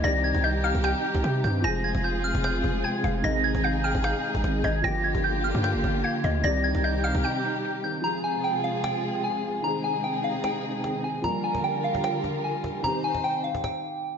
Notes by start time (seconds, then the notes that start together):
0.01 C2 C3 D#3 G3 C4 D#4 G4 D5 A#6, cajon bass
0.07 G4
0.14 cajon slap
0.24 G#6, cajon slap
0.35 C2, cajon bass
0.44 D#5 G6
0.64 F5 F6
0.75 C2, cajon bass
0.84 G5 G6, cajon slap
1.04 cajon slap
1.15 C2, cajon bass
1.24 C3, cajon slap
1.43 G2 D#3 C4 G4 G6, cajon bass
1.54 cajon slap
1.61 F1 F3 G#3 C4 F4 G#4 G#5 A#6, cajon bass
1.66 G#4
1.74 cajon slap
1.84 G#6, cajon slap
1.95 F1, cajon bass
2.04 G6
2.24 F6
2.35 F1, cajon bass
2.44 G6, cajon slap
2.55 cajon slap
2.64 F1, cajon bass
2.84 G5 G#6
3.04 F1 F5, cajon bass
3.22 G#1 D#3 C4 D#4 G#4 D#5 A#6, cajon bass
3.27 G#4
3.44 G#6, cajon slap
3.55 G#1, cajon bass
3.64 F5 G6
3.84 G5 F6
3.95 G#1, cajon bass
4.04 F5 G6, cajon slap
4.24 cajon slap
4.35 G#1, cajon bass
4.43 G#1 D#3 C4 G#4, cajon slap
4.64 G#1 D#5 G#6, cajon bass
4.82 G1 D3 F3 A#3 F4 G4 G5 A#6, cajon bass
4.87 G4
4.94 cajon slap
5.04 G#6, cajon slap
5.15 G1, cajon bass
5.24 G6
5.44 F6
5.55 G2, cajon bass
5.64 G6, cajon slap
5.75 F1, cajon slap
5.84 G1, cajon bass
6.04 F5 G#6
6.24 D2 D#5, cajon bass
6.41 C2 C3 D#3 G3 C4 D#4 G4 D5 A#6, cajon bass
6.46 G4
6.54 cajon slap
6.64 G#6, cajon slap
6.75 C2, cajon bass
6.84 D#5 G6
7.04 F5 F6
7.15 C2, cajon bass
7.24 G5 G6
7.83 D#3 C4 G4 G6
8.01 C3 F3 G#3 C4 F4 G#4 A#5, cajon slap
8.06 G#4
8.14 cajon slap
8.24 G#5, cajon slap
8.35 cajon slap
8.44 G5, cajon slap
8.64 F5, cajon slap
8.75 cajon slap
8.84 G5, cajon slap
8.94 cajon slap
9.04 cajon slap
9.14 cajon slap
9.24 G#5, cajon slap
9.29 cajon slap
9.35 cajon slap
9.39 cajon slap
9.44 cajon slap
9.49 cajon slap
9.55 cajon slap
9.59 D#3, cajon slap
9.64 C3 C4 D#4 G#4 A#5, cajon slap
9.74 cajon slap
9.84 G#5, cajon slap
9.95 cajon slap
10.04 G5, cajon slap
10.24 F5, cajon slap
10.35 cajon slap
10.44 G5, cajon slap
10.55 cajon slap
10.64 cajon slap
10.75 cajon slap
10.83 D#3 C4 G#4, cajon slap
10.95 cajon slap
10.99 cajon slap
11.04 G#5, cajon slap
11.09 cajon slap
11.15 cajon slap
11.19 F3, cajon slap
11.24 D3 G3 A#3 F4 A#4 A#5, cajon bass
11.44 G#5, cajon slap
11.55 cajon bass
11.64 G5
11.84 F5, cajon slap
11.95 cajon bass
12.04 G5, cajon slap
12.15 cajon slap
12.24 cajon bass
12.35 cajon slap
12.44 G#5, cajon slap
12.49 cajon slap
12.55 cajon slap
12.59 cajon slap
12.64 cajon bass
12.75 cajon slap
12.79 D#3, cajon slap
12.84 C3 C4 D#4 G4 C5 A#5, cajon bass
13.04 G#5
13.15 cajon bass
13.24 G5
13.44 F5, cajon slap
13.55 cajon bass
13.64 G5, cajon bass, cajon slap